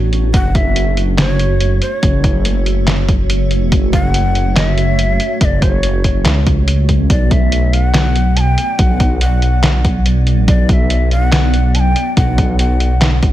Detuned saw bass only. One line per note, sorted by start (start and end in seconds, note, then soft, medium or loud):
0.00 0.32 A1 loud
0.34 1.17 F#1 medium
1.18 1.80 F#1 loud
2.03 2.44 F#1 loud
2.45 3.28 F#1 loud
3.29 3.70 F#1 medium
3.72 4.55 F#1 loud
4.56 5.18 F#1 loud
5.41 5.82 F#1 loud
5.83 6.24 F#1 loud
6.25 7.08 C#2 loud
7.10 7.93 B1 medium
7.94 8.56 B1 loud
8.79 9.20 B1 loud
9.21 10.04 B1 loud
10.06 10.46 B1 medium
10.48 11.31 B1 loud
11.32 11.94 B1 loud
12.17 12.58 B1 loud
12.59 13.21 B1 loud
13.23 13.33 A1 loud